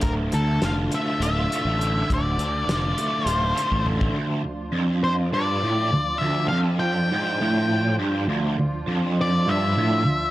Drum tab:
HH |x-x-x-x-x-x-x-|x-x-x-x-x-x---|--------------|--------------|
SD |----o---------|----o---------|--------------|--------------|
T2 |--------------|------------o-|--------------|--------------|
BD |o-------------|o----------o-o|--------------|--------------|

HH |--------------|
SD |--------------|
T2 |--------------|
BD |--------------|